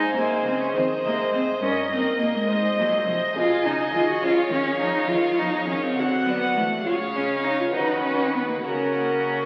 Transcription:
Already playing: harpsichord G#2, cello section G#2, cello D#4, viola section G#4, violin section C5 G#5
0.17 harpsichord C3 G#3 C4 D#4, cello section C3, cello A#3
0.46 harpsichord C#3, cello section C#3, cello C4
0.60 cello C#4
0.75 harpsichord D#3, cello section D#3, cello C4, violin section C5 D#5
1.04 harpsichord C3 G#3 C4 D#4, cello section C3, cello A#3
1.33 harpsichord G#2, cello section G#2, cello C4
1.62 cello section G2, harpsichord G2, cello C#4, viola section A#4, violin section D#5
1.91 cello section G#2, harpsichord G#2 A#3 D#4, cello C4
2.21 cello section A#2, harpsichord A#2, cello A#3
2.35 cello G#3
2.50 cello section G#2, harpsichord G#2, viola section C5, violin section D#5
2.79 cello section A#2, harpsichord A#2 C4 D#4 G#4, cello F#3
3.08 cello section C3, harpsichord C3, cello F3
3.37 cello section B2, harpsichord B2, cello F4, viola section G#4, violin section D#5 G#5
3.66 cello section C#3, harpsichord C#3 G#3 D#4 F#4, cello D#4
3.94 cello section D#3, harpsichord D#3, cello F4
4.09 cello F#4
4.23 cello section C#3, harpsichord C#3, cello F4, viola section G#4, violin section C#5 F5
4.52 cello section D#3, harpsichord D#3 G#3 C#4 F4, cello C#4
4.81 cello section F3, harpsichord F3, cello D#4
5.09 cello section D#3, harpsichord D#3, cello F4, viola section G#4
5.38 cello section F3, harpsichord F3 B3 F#4, cello D#4
5.68 cello section D#3, harpsichord D#3, cello C#4
5.82 cello C4
5.97 cello section D3, harpsichord D3, viola section F#4, violin section F#5
6.26 harpsichord F#3 C4 D4, cello section F#3, cello B3
6.56 harpsichord E3, cello section E3, cello A3
6.85 harpsichord C#3, cello section C#3, cello F4, viola section G#4, violin section C#5 F5
7.14 harpsichord G#3 C#4, cello C#4
7.44 cello D#4
7.60 cello F4
7.73 harpsichord D#3, cello section D#3, cello D#4, viola section F#4, violin section B4 F#5
8.02 harpsichord B3 F#4, cello C#4
8.33 cello B3
8.49 cello A#3
8.63 harpsichord C#3, cello section C#3, cello C#4, viola section F#4, violin section A#4 F#5
8.95 harpsichord A#3 C#4

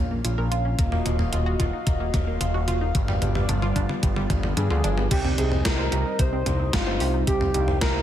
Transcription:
Already playing: analog synth bass A#1, analog synth pad A#3 C#4 F4 C#5 F5
0.11 synth arpeggio sound A#3
0.25 analog synth bass A#1, synth arpeggio sound F4, closed hi-hat, mid tom
0.38 analog synth bass A#1, synth arpeggio sound A#4
0.51 analog synth bass A#1, synth arpeggio sound F4, closed hi-hat
0.65 synth arpeggio sound C#4
0.79 analog synth bass D#1, synth arpeggio sound A#3, analog synth pad F#4 D#5, kick, closed hi-hat, mid tom
0.92 synth arpeggio sound A#3, mid tom
1.06 analog synth bass D#1, synth arpeggio sound A#3, closed hi-hat, mid tom
1.19 synth arpeggio sound A#3, mid tom
1.33 analog synth bass D#1, synth arpeggio sound F4, closed hi-hat, mid tom
1.46 synth arpeggio sound F#4
1.60 analog synth bass D#1, synth arpeggio sound F4, kick, closed hi-hat, mid tom
1.73 synth arpeggio sound D#4
1.87 analog synth bass D#1, synth arpeggio sound A#3, kick, closed hi-hat, mid tom
2.00 synth arpeggio sound A#3
2.14 analog synth bass D#1, synth arpeggio sound A#3, kick, closed hi-hat, mid tom
2.27 synth arpeggio sound A#3
2.41 analog synth bass D#1, synth arpeggio sound F4, closed hi-hat, mid tom
2.54 analog synth bass D#1, synth arpeggio sound F#4
2.68 analog synth bass D#1, synth arpeggio sound F4, closed hi-hat, mid tom
2.81 synth arpeggio sound D#4
2.95 analog synth bass G1, synth arpeggio sound G3, analog synth pad G3 B3 F4 D5, kick, closed hi-hat, mid tom
3.08 synth arpeggio sound G3, mid tom
3.22 analog synth bass G1, synth arpeggio sound G3, closed hi-hat, mid tom
3.35 synth arpeggio sound G3, mid tom
3.49 analog synth bass G1, synth arpeggio sound D4, closed hi-hat, mid tom
3.62 synth arpeggio sound F4, mid tom
3.76 analog synth bass G1, synth arpeggio sound D4, kick, closed hi-hat, mid tom
3.89 synth arpeggio sound B3, mid tom
4.03 analog synth bass G1, synth arpeggio sound G3, kick, closed hi-hat, mid tom
4.16 synth arpeggio sound G3, mid tom
4.30 analog synth bass G1, synth arpeggio sound G3, kick, closed hi-hat, mid tom
4.43 synth arpeggio sound G3, mid tom
4.57 analog synth bass G2, synth arpeggio sound D4, analog synth lead G#4, closed hi-hat, mid tom
4.70 analog synth bass D2, synth arpeggio sound F4, mid tom
4.84 analog synth bass G1, synth arpeggio sound D4, closed hi-hat, mid tom
4.97 synth arpeggio sound B3, mid tom
5.11 analog synth bass C2, analog synth pad G3 C4 D#4 C5 D#5, synth arpeggio sound C4, synth bell G4, analog synth lead G4, kick, closed hi-hat, crash
5.25 synth arpeggio sound C4, mid tom
5.38 analog synth bass C2, synth arpeggio sound C4, analog synth lead G#4, synth bell G#4, closed hi-hat
5.52 synth arpeggio sound C4, mid tom
5.65 analog synth bass C2, synth arpeggio sound G4, analog synth lead A#4, synth bell A#4, kick, snare, closed hi-hat
5.79 synth arpeggio sound C5
5.92 analog synth bass C2, synth arpeggio sound G4, closed hi-hat
6.06 synth arpeggio sound D#4
6.19 analog synth bass C2, synth arpeggio sound C4, synth bell C5, analog synth lead C5, kick, closed hi-hat
6.33 synth arpeggio sound C4
6.46 analog synth bass C2, synth arpeggio sound C4, closed hi-hat, mid tom
6.60 synth arpeggio sound C4
6.73 analog synth bass G1, analog synth lead F4, synth bell F4, synth arpeggio sound G4, kick, snare, closed hi-hat
6.87 analog synth bass G1, synth arpeggio sound C5
7.00 analog synth bass C2, synth arpeggio sound G4, open hi-hat
7.14 synth arpeggio sound D#4
7.27 analog synth bass C2, synth arpeggio sound C4, analog synth lead G4, synth bell G4, analog synth pad F5, kick, closed hi-hat
7.41 synth arpeggio sound C4, mid tom
7.54 analog synth bass C2, synth arpeggio sound C4, closed hi-hat
7.68 synth arpeggio sound C4, mid tom
7.81 analog synth bass C2, synth arpeggio sound G4, analog synth lead A#4, synth bell A#4, kick, snare, closed hi-hat
7.95 synth arpeggio sound C5

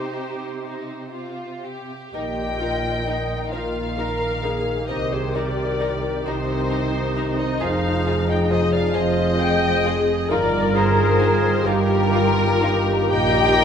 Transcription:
Already playing: cello section C3, violin section D#4 G4 C5, viola section G4
0.62 violin section D#4
1.13 violin section F4
1.65 violin section G4
2.12 double bass section A#1, cello section A#2, french horn section D#3 A#4, violin section D#4 A#4 G5, viola section G4, flute D#5
2.60 violin section D#4 A#4, viola section F4
3.07 viola section D#4, violin section D#4 A#4
3.52 double bass section A#1, cello section A#2, violin section D#4 A#4 F5, viola section F4, flute A#4
3.99 violin section D#4 A#4, viola section A#4
4.43 violin section D#4 A#4, viola section G#4
4.88 double bass section C2, cello section C3, violin section D#4 A#4 D#5, viola section G4, flute C5
5.12 flute G#4, violin section C5
5.35 violin section D#4 A#4 D5, flute A#4
5.79 violin section D#4 A#4
6.25 double bass section C2, cello section C3, violin section D#4 A#4 C5, viola section D#4, flute G4
6.71 violin section D#4 A#4
7.17 violin section D#4 A#4
7.38 flute C5, violin section D#5
7.60 double bass section F1, cello section F2, french horn section F3 G#4, violin section F4 G#4 F5, flute C5
8.06 violin section F4 G#4
8.29 flute D#5, violin section G5
8.51 violin section F4 G#4 D#5, flute C5
8.73 flute D5, violin section F5
8.93 double bass section F1, cello section F2, violin section F4 G#4 D#5, viola section F4, flute C5
9.39 violin section F4 G#4, viola section G5
9.85 violin section F4 G#4, viola section G#4
10.29 double bass section G1, cello section G2, french horn section D#3 F4, violin section D#4 F4 D5, flute A#4, viola section A#4
10.74 violin section D#4 F4 C5, flute G#4
11.20 violin section D#4 F4
11.65 double bass section G1, cello section G2, violin section D#4 F4 A#4, viola section G4, flute G4
12.14 violin section D#4 F4, viola section F4
12.62 violin section D#4 F4, viola section G4
13.10 double bass section A#1, cello section A#2, violin section D#4 A#4 G5, flute D#5

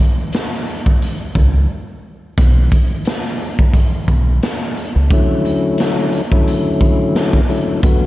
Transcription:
0.00 closed hi-hat
0.32 snare, closed hi-hat
0.53 closed hi-hat
0.67 closed hi-hat
0.86 kick
1.02 closed hi-hat
1.35 fingered electric bass C#2, kick, closed hi-hat
2.38 fingered electric bass B1, kick, closed hi-hat
2.72 kick, closed hi-hat
3.05 snare, closed hi-hat
3.26 closed hi-hat
3.39 open hi-hat
3.59 kick
3.74 kick, closed hi-hat
4.08 fingered electric bass B1, kick, closed hi-hat
4.43 snare, closed hi-hat
4.77 closed hi-hat
4.96 fingered electric bass C#2
5.10 tonewheel organ D3 F#3 A3 C#4 E4, kick, closed hi-hat
5.45 closed hi-hat
5.78 snare, closed hi-hat
5.98 closed hi-hat
6.12 closed hi-hat
6.31 tonewheel organ D3 F#3 A3 C#4 E4, kick
6.47 closed hi-hat
6.81 kick, closed hi-hat
7.15 snare, closed hi-hat
7.33 kick
7.48 tonewheel organ D3 F#3 A3 C#4 E4, closed hi-hat
7.83 tonewheel organ D3 F#3 A3 B3 F#4, kick, closed hi-hat

